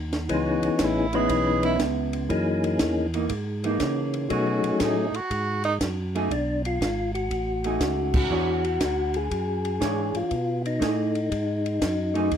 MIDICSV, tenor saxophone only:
0, 0, Header, 1, 2, 480
1, 0, Start_track
1, 0, Tempo, 500835
1, 288, Time_signature, 4, 2, 24, 8
1, 11857, End_track
2, 0, Start_track
2, 0, Title_t, "Tenor saxophone"
2, 0, Program_c, 0, 66
2, 315, Note_on_c, 0, 66, 74
2, 803, Note_on_c, 0, 64, 93
2, 817, Note_off_c, 0, 66, 0
2, 1106, Note_on_c, 0, 68, 115
2, 1120, Note_off_c, 0, 64, 0
2, 1576, Note_off_c, 0, 68, 0
2, 1581, Note_on_c, 0, 64, 97
2, 1721, Note_off_c, 0, 64, 0
2, 4147, Note_on_c, 0, 66, 84
2, 4622, Note_on_c, 0, 63, 87
2, 4637, Note_off_c, 0, 66, 0
2, 4943, Note_on_c, 0, 66, 122
2, 4957, Note_off_c, 0, 63, 0
2, 5406, Note_off_c, 0, 66, 0
2, 5412, Note_on_c, 0, 63, 113
2, 5503, Note_off_c, 0, 63, 0
2, 11857, End_track
0, 0, End_of_file